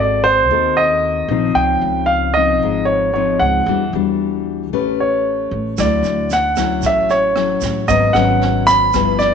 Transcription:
0.00 0.49 G#1 medium
0.00 0.49 G#3 medium
0.00 0.47 C4 medium
0.00 0.48 F#4 medium
0.00 0.48 A4 medium
0.00 0.23 D5 medium
0.24 0.79 C5 medium
0.49 1.25 D#2 medium
0.49 1.54 D#3 medium
0.49 1.26 C4 soft
0.49 1.26 F#4 medium
0.49 1.26 A4 medium
0.77 1.59 D#5 medium
1.28 1.54 A#1 medium
1.28 2.32 F3 medium
1.28 2.32 C4 medium
1.28 2.32 D#4 medium
1.55 1.80 C#2 medium
1.55 2.59 C#3 medium
1.55 2.10 G5 medium
1.81 2.61 C#2 medium
2.06 2.35 F5 medium
2.34 3.11 F3 medium
2.34 3.11 C4 medium
2.34 3.11 D#4 medium
2.34 2.84 D#5 medium
2.61 3.36 G#1 medium
2.61 3.65 G#2 medium
2.85 3.12 C#5 medium
3.14 3.66 F3 medium
3.14 3.66 C4 medium
3.14 3.66 D#4 medium
3.14 3.41 C#5 medium
3.39 3.65 C#2 medium
3.39 3.89 F#5 medium
3.66 3.91 E2 medium
3.66 4.71 E3 medium
3.66 3.83 G3 soft
3.66 3.83 D4 medium
3.66 3.84 F#4 medium
3.93 4.72 E2 medium
3.93 4.69 G3 medium
3.93 4.69 D4 medium
3.93 4.69 F#4 medium
4.72 5.47 A1 medium
4.72 5.76 A3 medium
4.72 5.74 C#4 medium
4.72 5.74 G4 medium
4.72 5.75 B4 medium
5.00 5.81 C#5 medium
5.51 5.76 A1 medium
5.78 6.02 D2 medium
5.78 6.81 D3 medium
5.78 6.30 F#3 soft
5.78 6.31 E4 soft
5.78 6.28 D5 medium
5.78 kick medium
5.78 cross-stick medium
5.78 snare soft
5.78 shaker medium
6.03 6.83 D2 medium
6.03 snare soft
6.03 shaker soft
6.30 6.86 F#5 medium
6.30 snare soft
6.30 shaker medium
6.56 7.32 F#3 medium
6.56 7.33 C#4 medium
6.56 7.33 E4 medium
6.56 kick soft
6.56 cross-stick medium
6.56 snare soft
6.56 shaker medium
6.82 7.58 A1 medium
6.82 7.86 A2 medium
6.82 kick medium
6.82 snare soft
6.82 shaker medium
6.86 7.12 E5 medium
7.09 7.92 C#5 medium
7.09 snare soft
7.09 shaker soft
7.36 7.87 F#3 medium
7.36 7.87 C#4 medium
7.36 7.87 E4 medium
7.36 cross-stick medium
7.36 snare soft
7.61 7.87 A1 medium
7.61 kick soft
7.61 snare soft
7.61 shaker medium
7.88 8.13 G#1 medium
7.88 8.92 G#2 soft
7.88 8.11 F#3 soft
7.88 8.11 B3 medium
7.88 8.11 C#4 medium
7.88 8.16 D#5 medium
7.88 kick medium
7.88 snare soft
7.88 shaker medium
8.13 8.94 G#1 medium
8.13 8.90 F#3 medium
8.13 8.90 B3 medium
8.13 8.90 C#4 medium
8.13 8.68 F#5 medium
8.13 cross-stick medium
8.13 snare soft
8.13 shaker soft
8.41 snare soft
8.67 9.22 B5 loud
8.67 kick soft
8.67 snare soft
8.67 shaker medium
8.93 9.34 G1 medium
8.93 9.34 G2 medium
8.93 9.34 F3 medium
8.93 9.34 B3 medium
8.93 9.34 E4 medium
8.93 kick medium
8.93 cross-stick medium
8.93 snare soft
8.93 shaker medium
9.19 9.34 D5 medium
9.19 snare soft
9.19 shaker soft

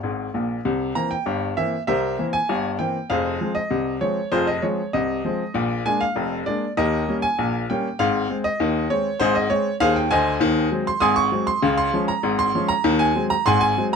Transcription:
0.00 0.26 G#1 medium
0.00 0.27 G#2 medium
0.00 0.31 G#4 medium
0.00 0.31 D#5 medium
0.00 0.30 G#5 medium
0.34 0.57 A#1 medium
0.34 0.57 A#2 medium
0.65 0.91 C2 medium
0.65 0.91 C3 medium
0.95 1.13 E3 soft
0.95 1.13 A#3 medium
0.95 1.13 C4 medium
0.95 1.11 A#5 medium
1.11 1.48 G5 medium
1.26 1.52 G1 medium
1.26 1.52 G2 medium
1.57 1.74 E3 soft
1.57 1.74 A#3 medium
1.57 1.75 C4 medium
1.57 1.82 E5 medium
1.87 2.14 C2 medium
1.87 2.14 C3 medium
1.87 2.31 A#4 medium
1.87 2.31 C5 medium
1.87 2.24 E5 medium
2.19 2.36 E3 medium
2.19 2.36 A#3 medium
2.19 2.36 C4 medium
2.33 2.70 G#5 medium
2.49 2.75 G1 medium
2.49 2.75 G2 medium
2.79 2.96 E3 soft
2.79 2.97 A#3 soft
2.79 2.97 C4 medium
2.79 3.08 G5 medium
3.10 3.36 F1 medium
3.10 3.36 F2 medium
3.10 3.53 G#4 medium
3.10 3.53 C5 medium
3.10 3.53 F5 medium
3.41 3.58 F3 soft
3.41 3.58 G#3 medium
3.41 3.58 C4 medium
3.55 3.92 D#5 medium
3.70 3.97 C2 medium
3.70 3.97 C3 medium
4.01 4.18 F3 soft
4.01 4.18 G#3 soft
4.01 4.19 C4 medium
4.01 4.30 C#5 medium
4.32 4.58 F1 medium
4.32 4.58 F2 medium
4.32 4.47 F4 medium
4.32 4.47 G#4 medium
4.32 4.47 C5 loud
4.47 4.63 D#5 medium
4.62 4.80 F3 medium
4.62 4.80 G#3 medium
4.62 4.80 C4 soft
4.62 4.92 C#5 medium
4.93 5.20 C2 medium
4.93 5.20 C3 medium
4.93 5.52 D#5 medium
5.25 5.41 F3 medium
5.25 5.42 G#3 soft
5.25 5.42 C4 medium
5.54 5.81 A#1 medium
5.54 5.81 A#2 loud
5.86 6.02 G#3 medium
5.86 6.02 A#3 medium
5.86 6.03 D4 medium
5.86 6.01 G#5 medium
6.01 6.37 F5 medium
6.16 6.42 F1 medium
6.16 6.42 F2 medium
6.46 6.63 G#3 medium
6.46 6.64 A#3 medium
6.46 6.64 D4 medium
6.46 6.71 D5 medium
6.77 7.03 D#2 medium
6.77 7.03 D#3 medium
6.77 7.20 G4 medium
6.77 7.20 A#4 medium
6.77 7.14 D#5 loud
7.08 7.25 G3 medium
7.08 7.25 A#3 medium
7.08 7.26 C#4 medium
7.22 7.59 G#5 medium
7.39 7.64 A#1 medium
7.39 7.64 A#2 medium
7.70 7.86 G3 medium
7.70 7.87 A#3 medium
7.70 7.87 C#4 medium
7.70 7.98 G5 medium
7.99 8.25 G#1 medium
7.99 8.25 G#2 medium
7.99 8.35 F5 loud
8.29 8.46 G#3 medium
8.29 8.47 C4 medium
8.44 8.88 D#5 medium
8.60 8.86 D#2 medium
8.60 8.86 D#3 medium
8.90 9.07 G#3 medium
8.90 9.07 C4 medium
8.90 9.19 C#5 medium
9.20 9.46 G#1 medium
9.20 9.46 G#2 loud
9.20 9.35 D#4 medium
9.20 9.35 G#4 medium
9.20 9.35 C5 loud
9.35 9.51 D#5 medium
9.50 9.67 G#3 medium
9.50 9.67 C4 medium
9.50 9.74 C#5 loud
9.80 10.07 D#2 medium
9.80 10.07 D#3 medium
9.80 9.95 G#4 medium
9.80 9.95 C5 medium
9.80 9.96 F5 loud
9.96 10.11 G5 medium
10.11 10.36 D2 medium
10.11 10.36 D3 medium
10.11 10.84 C5 medium
10.11 10.84 D#5 medium
10.11 10.72 G#5 loud
10.40 10.67 D#2 medium
10.40 10.67 D#3 loud
10.72 10.89 F#3 medium
10.72 10.89 G#3 medium
10.72 10.89 C4 medium
10.87 11.00 C6 loud
11.00 11.28 G#1 loud
11.00 11.28 G#2 medium
11.00 11.16 G#5 medium
11.00 11.16 C6 medium
11.00 11.17 D#6 loud
11.16 11.46 C#6 loud
11.32 11.49 F#3 medium
11.32 11.49 G#3 medium
11.32 11.49 C4 medium
11.47 11.72 C6 loud
11.62 11.89 C#2 medium
11.62 11.89 C#3 loud
11.77 12.02 C6 loud
11.93 12.10 F3 medium
11.93 12.11 G#3 medium
11.93 12.11 C#4 medium
12.08 12.38 A#5 medium
12.23 12.50 G#1 medium
12.23 12.50 G#2 medium
12.39 12.68 C6 loud
12.55 12.72 F3 medium
12.55 12.72 G#3 medium
12.55 12.72 C#4 medium
12.68 12.94 A#5 loud
12.84 13.11 D#2 loud
12.84 13.11 D#3 loud
12.99 13.24 G#5 loud
13.15 13.32 F#3 medium
13.15 13.32 G#3 medium
13.15 13.33 C4 medium
13.30 13.46 A#5 loud
13.46 13.72 G#1 loud
13.46 13.72 G#2 medium
13.46 13.61 F#5 medium
13.46 13.59 G#5 medium
13.46 13.61 C6 loud
13.61 13.85 G#5 loud
13.77 13.94 F#3 medium
13.77 13.94 G#3 medium
13.77 13.94 C4 medium

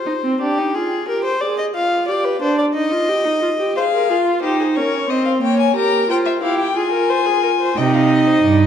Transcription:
0.00 0.36 C5 medium
0.06 0.13 D#4 medium
0.24 0.40 C4 medium
0.41 0.60 D4 medium
0.41 0.76 G4 medium
0.58 0.75 D#4 medium
0.75 1.08 F4 medium
0.75 1.08 G#4 medium
1.08 1.41 G4 medium
1.08 1.24 A#4 medium
1.24 1.43 C5 medium
1.41 1.75 G#4 medium
1.41 1.58 D5 medium
1.58 1.65 D#5 medium
1.75 2.10 F4 medium
1.75 2.08 F5 medium
2.08 2.41 G4 medium
2.08 2.26 D5 medium
2.24 2.41 B4 medium
2.41 2.74 D4 medium
2.41 2.58 C5 medium
2.58 2.65 D5 medium
2.74 2.93 D#4 medium
2.74 3.73 D#5 medium
2.91 3.10 F4 medium
3.09 3.26 G4 medium
3.25 3.41 D#4 medium
3.42 3.49 F4 medium
3.59 3.78 G4 medium
3.76 4.11 G#4 medium
3.76 3.83 C5 medium
3.76 4.39 F5 loud
3.93 4.09 A#4 medium
4.10 4.42 F4 medium
4.10 4.17 G#4 medium
4.26 4.42 F4 medium
4.42 4.78 D#4 medium
4.42 4.59 G4 medium
4.42 4.77 C5 medium
4.60 4.67 G#4 medium
4.76 5.09 C#4 medium
4.76 5.08 A#4 medium
4.76 5.11 C#5 medium
5.09 5.41 C4 medium
5.09 5.42 C5 medium
5.09 5.25 D#5 medium
5.25 5.32 F5 medium
5.42 5.75 A#3 medium
5.42 5.76 C#5 medium
5.42 5.59 G5 medium
5.60 5.76 G#5 medium
5.76 6.09 G4 medium
5.76 6.12 A#4 medium
5.76 6.09 A#5 loud
6.09 6.42 F4 medium
6.09 6.43 C5 medium
6.09 6.17 G5 medium
6.25 6.32 E5 medium
6.42 6.75 E4 medium
6.42 6.76 G4 medium
6.42 6.59 F5 medium
6.59 6.78 G5 medium
6.76 7.74 F4 medium
6.76 6.91 G#4 medium
6.76 7.78 G#5 medium
6.92 7.11 A#4 medium
7.10 7.27 C5 medium
7.26 7.42 G#4 medium
7.43 7.50 A#4 medium
7.60 7.79 C5 medium
7.76 8.40 C3 medium
7.76 8.67 D#4 medium
7.76 8.67 D#5 medium
7.76 7.95 G5 medium
7.94 8.11 F5 medium
8.09 8.28 D#5 medium
8.26 8.43 C5 medium
8.44 8.67 G2 medium
8.44 8.62 D5 medium
8.60 8.67 D#5 medium

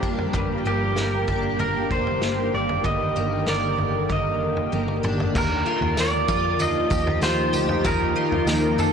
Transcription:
0.00 0.33 G2 medium
0.00 0.31 F3 medium
0.00 0.31 G3 medium
0.00 0.65 A#3 medium
0.00 5.31 A#3 medium
0.00 1.27 D4 medium
0.00 5.31 G4 medium
0.00 kick medium
0.18 floor tom medium
0.33 0.62 G1 medium
0.33 2.83 G2 medium
0.33 5.31 D3 medium
0.33 5.31 D#3 medium
0.33 kick medium
0.33 floor tom loud
0.65 0.94 G1 medium
0.65 1.59 A#3 medium
0.65 1.63 G4 medium
0.96 1.25 G1 medium
0.96 3.47 A#4 medium
0.96 snare medium
1.28 1.56 G1 medium
1.28 1.90 D4 medium
1.28 kick medium
1.28 floor tom medium
1.59 1.87 G1 loud
1.59 2.22 A#3 medium
1.59 1.91 A#4 medium
1.59 floor tom medium
1.91 2.22 F1 medium
1.91 2.53 D4 soft
1.91 2.54 C5 medium
1.91 kick medium
2.07 floor tom medium
2.22 2.50 G1 medium
2.22 3.15 A#3 medium
2.22 snare medium
2.54 2.81 G1 medium
2.54 2.85 D5 medium
2.69 floor tom medium
2.84 3.12 G1 medium
2.84 5.35 G2 medium
2.84 3.49 D#5 medium
2.84 kick loud
2.84 floor tom loud
3.16 3.44 G1 medium
3.16 4.09 A#3 medium
3.46 3.75 G1 medium
3.46 6.90 A#4 medium
3.46 4.12 D5 medium
3.46 snare loud
3.78 4.06 G1 medium
3.78 floor tom medium
4.09 4.42 G1 medium
4.09 4.72 A#3 soft
4.09 5.01 D#5 medium
4.09 kick medium
4.09 floor tom medium
4.42 4.69 F1 medium
4.57 floor tom medium
4.72 5.00 G1 medium
4.72 5.97 A#3 medium
4.72 high tom soft
4.88 mid tom medium
5.03 5.31 G1 medium
5.03 5.41 D4 medium
5.03 mid tom medium
5.20 floor tom medium
5.34 5.63 D#2 loud
5.34 8.93 F3 medium
5.34 8.93 A#3 medium
5.34 8.93 D#4 medium
5.34 8.93 G4 medium
5.34 6.01 A#4 medium
5.34 kick loud
5.34 floor tom loud
5.34 crash medium
5.34 tambourine medium
5.66 6.28 F4 medium
5.81 5.95 D#2 medium
5.81 floor tom medium
5.97 6.25 D#2 loud
5.97 8.46 A#3 medium
5.97 6.61 D5 loud
5.97 snare loud
5.97 tambourine medium
6.28 6.59 F2 medium
6.28 7.21 F4 medium
6.28 kick medium
6.28 floor tom medium
6.28 tambourine medium
6.59 6.87 D#2 loud
6.59 8.93 F3 medium
6.59 7.22 D#5 loud
6.59 floor tom medium
6.59 tambourine medium
6.90 7.19 D#2 loud
6.90 7.52 G4 medium
6.90 kick medium
6.90 tambourine medium
7.07 floor tom medium
7.22 7.50 D#2 medium
7.22 8.15 F4 medium
7.22 7.87 C5 medium
7.22 snare loud
7.22 tambourine medium
7.53 7.81 D2 medium
7.53 8.93 G4 medium
7.53 tambourine medium
7.69 floor tom medium
7.84 8.12 D#2 loud
7.84 8.93 D#3 medium
7.84 8.82 A#4 medium
7.84 kick loud
7.84 floor tom loud
7.84 tambourine medium
8.16 8.78 F4 medium
8.32 8.46 D#2 medium
8.32 floor tom medium
8.47 8.74 D#2 medium
8.47 8.93 A#3 medium
8.47 snare loud
8.47 tambourine medium
8.78 8.93 F2 medium
8.78 8.93 F4 medium
8.78 8.93 A4 medium
8.78 floor tom medium
8.78 tambourine medium

